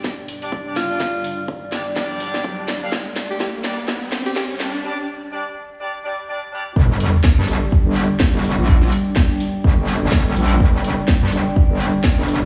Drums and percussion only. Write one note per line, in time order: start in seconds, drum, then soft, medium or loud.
0.04 kick loud
0.04 snare medium
0.28 open hi-hat loud
0.42 open hi-hat medium
0.52 kick loud
0.76 snare medium
0.76 open hi-hat loud
1.00 kick loud
1.00 snare medium
1.24 open hi-hat loud
1.48 kick loud
1.72 snare medium
1.72 open hi-hat loud
1.96 kick loud
1.96 snare medium
2.20 open hi-hat loud
2.34 snare medium
2.44 kick loud
2.68 snare medium
2.68 open hi-hat loud
2.92 kick loud
2.92 snare medium
3.16 snare medium
3.16 open hi-hat loud
3.40 kick loud
3.40 snare medium
3.64 snare medium
3.64 open hi-hat loud
3.88 kick loud
3.88 snare medium
4.12 snare medium
4.12 open hi-hat loud
4.26 open hi-hat medium
4.36 kick loud
4.36 snare medium
4.60 snare medium
4.60 open hi-hat loud
6.76 kick loud
7.00 open hi-hat loud
7.24 kick loud
7.24 snare loud
7.48 open hi-hat loud
7.72 kick loud
7.96 open hi-hat loud
8.20 kick loud
8.20 snare loud
8.44 open hi-hat loud
8.68 kick loud
8.82 snare soft
8.92 open hi-hat loud
9.16 kick loud
9.16 snare loud
9.40 open hi-hat loud
9.64 kick loud
9.88 open hi-hat loud
10.12 kick loud
10.12 snare loud
10.36 open hi-hat loud
10.60 kick loud
10.84 open hi-hat loud
11.08 kick loud
11.08 snare loud
11.32 open hi-hat loud
11.56 kick loud
11.80 open hi-hat loud
12.04 kick loud
12.04 snare loud
12.28 open hi-hat loud